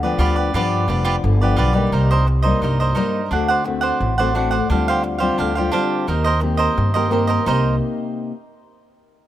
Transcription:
Already playing: upright bass D2, nylon-string guitar D3
0.03 nylon-string guitar F3 B3 D4, cavaquinho G4 B4 D5
0.18 upright bass D2, cavaquinho F4 G4 B4 D5
0.36 cavaquinho G4 B4 D5
0.54 upright bass G2, nylon-string guitar G2 F3 B3 D4, cavaquinho F4 G4 B4 D5
0.88 upright bass F1, nylon-string guitar F3 B3 D4, cavaquinho F4 G4 B4 D5
1.05 cavaquinho F4 G4 B4 D5
1.24 upright bass G1, nylon-string guitar D3
1.41 nylon-string guitar F3 B3 D4, cavaquinho G4 B4 D5
1.56 upright bass B1, cavaquinho F4 G4 B4 D5
1.73 nylon-string guitar G3 A#3 D#4, cavaquinho G4 B4 D5
1.92 upright bass C2, nylon-string guitar C3, cavaquinho D#4 A#4 C5 D#5
2.11 cavaquinho A#4 C5 D#5
2.27 muted cavaquinho stroke
2.42 nylon-string guitar G3 A#3 D#4, cavaquinho A#4 C5 D#5
2.62 upright bass C2, nylon-string guitar G2, cavaquinho D#4 A#4 C5 D#5
2.80 cavaquinho A#4 C5 D#5
2.95 nylon-string guitar G3 A#3 D#4, cavaquinho D#4 A#4 C5 D#5
3.31 upright bass D2, nylon-string guitar D3 A3 C4 F#4, cavaquinho D4 C5 D5 F#5
3.48 cavaquinho C5 D5 F#5
3.64 nylon-string guitar A3 C4 F#4, muted cavaquinho stroke
3.81 cavaquinho C5 D5 F#5
4.00 upright bass A1, nylon-string guitar A2
4.18 nylon-string guitar A3 C4 F#4, cavaquinho C5 D5 F#5
4.35 nylon-string guitar A3 C4 F#4, cavaquinho D4 C5 D5 F#5
4.51 cavaquinho C5 D5 F#5
4.70 upright bass D2, nylon-string guitar D3 G3 C4 F4, cavaquinho D4 G4 C5 F5
4.88 cavaquinho G4 C5 F5
5.03 muted cavaquinho stroke
5.18 nylon-string guitar G3 C4 F4, cavaquinho G4 C5 F5
5.38 upright bass D2, nylon-string guitar D3, cavaquinho D4 G4 C5 F5
5.55 nylon-string guitar G3 C4, cavaquinho G4 C5 F5
5.60 nylon-string guitar F4
5.72 nylon-string guitar G3 C4 F4, cavaquinho D4 G4 C5 F5
6.07 upright bass D#2, nylon-string guitar D#3 A#3 C4 G4, cavaquinho D#4 A#4 C5 D#5
6.24 cavaquinho A#4 C5 D#5
6.40 nylon-string guitar A#3 C4 G4, muted cavaquinho stroke
6.57 cavaquinho A#4 C5 D#5
6.78 upright bass G2, nylon-string guitar D#3
6.94 nylon-string guitar A#3 C4 G4, cavaquinho A#4 C5 D#5
7.10 nylon-string guitar A#3 C4 G4, cavaquinho D#4 A#4 C5 D#5
7.27 cavaquinho A#4 C5 D#5
7.45 upright bass C2, nylon-string guitar C3 A#3 D#4 G4, cavaquinho D#4 A#4 C5 D#5

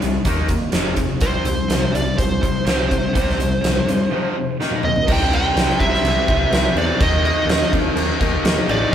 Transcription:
0.02 picked electric bass C2, overdriven electric guitar C3 G3, closed hi-hat
0.25 picked electric bass D#2, overdriven electric guitar D#3 A#3 D#4, kick, closed hi-hat
0.49 overdriven electric guitar D#3 A#3, kick, closed hi-hat
0.72 picked electric bass F1, overdriven electric guitar F2 C3 F3, snare, closed hi-hat
0.96 overdriven electric guitar F2 C3, kick, closed hi-hat
1.21 picked electric bass C2, overdriven electric guitar C3 G3 C4, lead electric guitar C5, kick, closed hi-hat
1.45 picked electric bass C2, overdriven electric guitar C3 G3, closed hi-hat
1.69 picked electric bass C2, overdriven electric guitar C3 G3, snare, closed hi-hat
1.94 picked electric bass C2, overdriven electric guitar C3 G3, lead electric guitar D5, closed hi-hat
2.16 picked electric bass C2, distorted electric guitar C3, lead electric guitar C5, kick, closed hi-hat
2.20 overdriven electric guitar C3 G3
2.43 overdriven electric guitar C3 G3, kick, closed hi-hat
2.67 picked electric bass C2, overdriven electric guitar C3 G3 C4, snare, closed hi-hat
2.88 distorted electric guitar C3, kick, closed hi-hat
2.92 overdriven electric guitar C3 G3
3.15 picked electric bass C2, overdriven electric guitar C3 G3 C4, kick, closed hi-hat
3.29 snare
3.39 picked electric bass C2, overdriven electric guitar C3 G3, closed hi-hat
3.61 picked electric bass C2, distorted electric guitar C3 G3, snare, closed hi-hat
3.65 overdriven electric guitar C3 G3
3.86 picked electric bass G2, overdriven electric guitar C3 G3, closed hi-hat
4.12 overdriven electric guitar F2 C3 F3
4.37 overdriven electric guitar F2 C3
4.60 overdriven electric guitar D#3 A#3 D#4, snare
4.71 high tom
4.83 overdriven electric guitar D#3 A#3, lead electric guitar D#5, mid tom
4.96 floor tom
5.07 picked electric bass C2, overdriven electric guitar C3 G3, kick, crash
5.12 overdriven electric guitar C4, lead electric guitar G5
5.33 lead electric guitar G5, crash
5.55 picked electric bass C2, snare, crash
5.70 snare
5.79 picked electric bass C2, lead electric guitar E5, kick, crash
5.94 snare
6.03 picked electric bass C2, crash
6.28 picked electric bass C2, overdriven electric guitar G3 C4, kick, crash
6.32 overdriven electric guitar C3
6.51 picked electric bass C2, overdriven electric guitar C3, snare, crash
6.55 overdriven electric guitar G3 C4
6.75 picked electric bass E2, distorted electric guitar G3 C4, lead electric guitar D5, crash
6.79 distorted electric guitar C3
7.00 picked electric bass D#2, overdriven electric guitar D#3 A#3, lead electric guitar D#5, kick, crash
7.05 overdriven electric guitar D#4
7.25 lead electric guitar D#5, crash
7.46 picked electric bass D#2, crash
7.50 snare
7.62 snare
7.73 picked electric bass D#2, kick, crash
7.96 picked electric bass D#2, crash
8.20 picked electric bass D#2, overdriven electric guitar A#3 D#4, kick, crash
8.24 overdriven electric guitar D#3
8.44 picked electric bass D#2, overdriven electric guitar D#3 A#3 D#4, snare, crash
8.68 picked electric bass A1, distorted electric guitar D#3 A#3 D#4, lead electric guitar D5, crash
8.91 overdriven electric guitar A#2

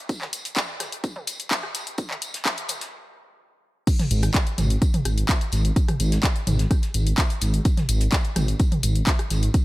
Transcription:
0.09 kick, closed hi-hat, tambourine
0.22 snare, clap, mid tom
0.33 closed hi-hat, tambourine
0.45 closed hi-hat
0.56 kick, snare, clap, closed hi-hat, tambourine
0.80 cross-stick, snare, closed hi-hat, mid tom, tambourine
0.92 closed hi-hat
1.04 kick, closed hi-hat, tambourine
1.16 mid tom
1.27 closed hi-hat, tambourine
1.40 closed hi-hat
1.51 kick, snare, clap, closed hi-hat, tambourine
1.63 cross-stick
1.75 snare, closed hi-hat, tambourine
1.87 closed hi-hat
1.98 kick, closed hi-hat, tambourine
2.11 clap, mid tom
2.22 closed hi-hat, tambourine
2.34 snare, closed hi-hat
2.45 kick, cross-stick, snare, clap, closed hi-hat, tambourine
2.58 closed hi-hat
2.69 closed hi-hat, mid tom, tambourine
2.80 snare, closed hi-hat
3.87 kick, closed hi-hat, crash, tambourine
3.99 snare, closed hi-hat, mid tom
4.11 detuned saw bass G#1, closed hi-hat, tambourine
4.23 cross-stick, closed hi-hat
4.34 kick, snare, clap, closed hi-hat, tambourine
4.47 closed hi-hat
4.58 detuned saw bass G#1, snare, closed hi-hat, mid tom, tambourine
4.70 closed hi-hat
4.82 kick, closed hi-hat, tambourine
4.94 closed hi-hat, mid tom
5.05 detuned saw bass G#1, cross-stick, closed hi-hat, tambourine
5.18 closed hi-hat
5.29 kick, snare, clap, closed hi-hat, tambourine
5.41 closed hi-hat
5.52 detuned saw bass G#1, snare, closed hi-hat, tambourine
5.65 closed hi-hat
5.76 kick, closed hi-hat, tambourine
5.88 cross-stick, closed hi-hat, mid tom
6.00 detuned saw bass G#1, closed hi-hat, tambourine
6.12 snare, closed hi-hat
6.23 kick, snare, clap, closed hi-hat, tambourine
6.36 closed hi-hat
6.47 detuned saw bass G#1, closed hi-hat, mid tom, tambourine
6.59 snare, closed hi-hat
6.71 kick, cross-stick, closed hi-hat, tambourine
6.82 snare, closed hi-hat
6.94 detuned saw bass G#1, closed hi-hat, tambourine
7.07 closed hi-hat
7.18 kick, snare, clap, closed hi-hat, tambourine
7.30 closed hi-hat
7.41 detuned saw bass G#1, snare, closed hi-hat, tambourine
7.54 closed hi-hat
7.65 kick, closed hi-hat, tambourine
7.77 snare, closed hi-hat, mid tom
7.89 detuned saw bass G#1, closed hi-hat, tambourine
8.01 closed hi-hat
8.12 kick, snare, clap, closed hi-hat, tambourine
8.25 closed hi-hat
8.36 detuned saw bass G#1, cross-stick, snare, closed hi-hat, mid tom, tambourine
8.48 closed hi-hat
8.59 kick, closed hi-hat, tambourine
8.72 closed hi-hat, mid tom
8.83 detuned saw bass G#1, closed hi-hat, tambourine
8.95 closed hi-hat
9.07 kick, snare, clap, closed hi-hat, tambourine
9.19 cross-stick, closed hi-hat
9.30 detuned saw bass G#1, snare, closed hi-hat, tambourine
9.43 closed hi-hat
9.54 kick, closed hi-hat, tambourine

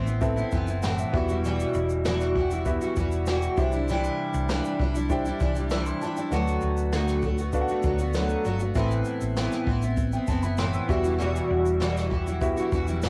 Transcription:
Already playing: fingered electric bass A1, grand piano C4 E4 A4 B4 E5
0.05 steel-string acoustic guitar B3 C4 E4, shaker
0.21 grand piano C4 E4 A4 B4 E5, kick, shaker
0.36 steel-string acoustic guitar B3 C4 E4, shaker
0.52 fingered electric bass F#1, steel-string acoustic guitar E3 B3 C4 E4, grand piano E5, kick, shaker
0.67 steel-string acoustic guitar B3 C4 E4, shaker
0.83 steel-string acoustic guitar A2 E3 B3 C4 E4, grand piano F#5, snare, shaker
0.98 grand piano E5, shaker
1.12 fingered electric bass E1, steel-string acoustic guitar E3 G3 E4, grand piano B3 E4 F#4 G4 E5, kick
1.17 steel-string acoustic guitar F#4
1.29 steel-string acoustic guitar E3 G3 E4 F#4, shaker
1.44 steel-string acoustic guitar E2 B2 E3 G3 E4 F#4, shaker
1.60 shaker
1.74 fingered electric bass E1, shaker
1.89 shaker
2.05 steel-string acoustic guitar E2 B2 E3 G3 E4 F#4, snare, shaker
2.21 snare, shaker
2.36 steel-string acoustic guitar E3 G3 E4 F#4, kick
2.51 steel-string acoustic guitar E3 G3 E4 F#4, shaker
2.65 grand piano B3 E4 F#4 G4 E5, kick, shaker
2.81 steel-string acoustic guitar E3 G3 E4 F#4, shaker
2.96 fingered electric bass E1, steel-string acoustic guitar E3 G3 E4 F#4, kick, shaker
3.11 shaker
3.26 steel-string acoustic guitar E2 B2 E3 G3 E4 F#4, snare, shaker
3.42 shaker
3.57 fingered electric bass C2, steel-string acoustic guitar E3 G3 D4 E4, grand piano D4 E4 G4 C5 E5, kick, shaker
3.72 steel-string acoustic guitar D4 E4, shaker
3.76 steel-string acoustic guitar G3
3.88 steel-string acoustic guitar C3 E3 G3 D4 E4, shaker
4.04 shaker
4.34 fingered electric bass C2, shaker
4.49 steel-string acoustic guitar C3 E3 G3 D4 E4, snare, shaker
4.65 shaker
4.79 fingered electric bass C2, steel-string acoustic guitar E3 G3 D4 E4, kick
4.94 steel-string acoustic guitar G3 D4 E4, shaker
5.10 grand piano D4 E4 G4 C5 G5, kick, shaker
5.25 steel-string acoustic guitar G3 D4 E4, shaker
5.40 fingered electric bass C2, steel-string acoustic guitar E3 G3 D4 E4, kick, shaker
5.55 steel-string acoustic guitar G3 D4 E4, shaker
5.70 steel-string acoustic guitar C3 E3 G3 D4 E4, grand piano E6, snare, shaker
5.86 grand piano C6, shaker
6.01 steel-string acoustic guitar E3 G3 D4 E4, grand piano A5, shaker
6.17 steel-string acoustic guitar G3 D4 E4, grand piano G5, shaker
6.31 fingered electric bass D2, steel-string acoustic guitar D3 F#3 A3 B3 F#4, grand piano D4 F#4 A4 B4 F#5, shaker
6.48 shaker
6.61 fingered electric bass D2, shaker
6.77 shaker
6.93 steel-string acoustic guitar D3 F#3 A3 B3 F#4, snare, shaker
7.08 snare, shaker
7.22 steel-string acoustic guitar F#3 A3 B3 F#4, kick, shaker
7.38 steel-string acoustic guitar A3 B3 F#4, shaker
7.53 grand piano D4 F#4 A4 B4 F5, kick, shaker
7.61 grand piano F#5
7.68 steel-string acoustic guitar A3 B3 F#4, shaker
7.83 fingered electric bass D2, steel-string acoustic guitar F#3 A3 B3, kick, shaker
7.87 steel-string acoustic guitar F#4
7.99 steel-string acoustic guitar A3 B3 F#4, shaker
8.13 steel-string acoustic guitar D3 F#3 A3 B3 F#4, snare, shaker
8.29 shaker
8.45 fingered electric bass G1, steel-string acoustic guitar F#3 A3 B3 F#4, shaker
8.60 steel-string acoustic guitar A3 B3 F#4, shaker
8.74 fingered electric bass A1, steel-string acoustic guitar A2 E3 B3 C4 E4, grand piano C4 E4 A4 B4 E5, kick, shaker
8.91 shaker
9.04 shaker
9.21 fingered electric bass A1, shaker
9.37 steel-string acoustic guitar A2 E3 B3 C4 E4, snare, shaker
9.52 snare, shaker
9.67 fingered electric bass A1, steel-string acoustic guitar E3 B3 C4 E4, kick
9.82 steel-string acoustic guitar B3 C4 E4, shaker
9.97 kick, shaker
10.12 steel-string acoustic guitar B3 C4 E4, grand piano G5, shaker
10.27 fingered electric bass F#1, steel-string acoustic guitar E3 B3 C4 E4, grand piano A5, kick, shaker
10.43 steel-string acoustic guitar B3 C4 E4, grand piano B5, shaker
10.57 steel-string acoustic guitar A2 E3 B3 C4 E4, grand piano C6, snare, shaker
10.74 grand piano E6, shaker
10.88 fingered electric bass E1, steel-string acoustic guitar E3 G3 E4 F#4, grand piano B3 E4 F#4 G4 E5, kick, shaker
11.04 steel-string acoustic guitar E3 G3 E4 F#4, shaker
11.19 steel-string acoustic guitar E2 B2 E3 G3 E4 F#4, shaker
11.36 shaker
11.50 fingered electric bass E1
11.66 shaker
11.80 steel-string acoustic guitar E2 B2 E3 G3 E4 F#4, snare, shaker
11.97 snare, shaker
12.10 steel-string acoustic guitar E3 G3 E4 F#4, kick
12.26 steel-string acoustic guitar E3 G3 E4 F#4, shaker
12.41 grand piano B3 E4 F#4 G4 E5, kick, shaker
12.57 steel-string acoustic guitar E3 G3 E4 F#4, shaker
12.72 fingered electric bass E1, steel-string acoustic guitar E3 G3 E4 F#4, kick, shaker
12.87 steel-string acoustic guitar E3 G3 E4 F#4, shaker
13.02 steel-string acoustic guitar E2 B2 E3 G3 E4 F#4, snare, shaker

